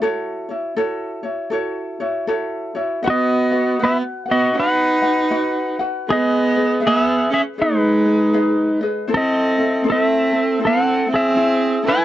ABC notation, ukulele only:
X:1
M:4/4
L:1/8
Q:"Swing" 1/4=79
K:E
V:1 name="Ukulele"
[EFAc] [EFc] [EFAc] [EFc] [EFAc] [EFc] [EFAc] [EFc] | [FBdf] [FBf] [FBf] [FBf] [FBdf] [FBf] [FBdf] [FBf] | [GBd] [GBd] [GBe] [GB] [GBd] [GBd] [GBd] [GBd] | [=CEA=c] [CEA] [CEAc] [CEA] [CEAc] [CE] [CEc] [CEA] |]